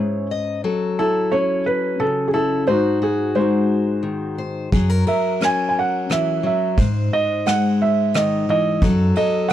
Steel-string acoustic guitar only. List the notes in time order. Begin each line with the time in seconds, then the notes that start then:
Already playing: G#2 C#4 G#4
0.31 D#5
0.64 F#3 A4
0.99 E4
1.32 C#4
2.00 C#3
2.33 E4
2.67 G#2 F#4
3.02 F#4
3.35 G#3
4.03 D#3
4.38 C5
4.73 F#3 G#4
4.90 A#4
5.07 A#4
5.41 C#4
6.10 E3
6.43 F#3
6.78 G#2 C5
7.46 G#3
8.15 D#3
8.49 E3
8.83 F#3 A4
9.17 A4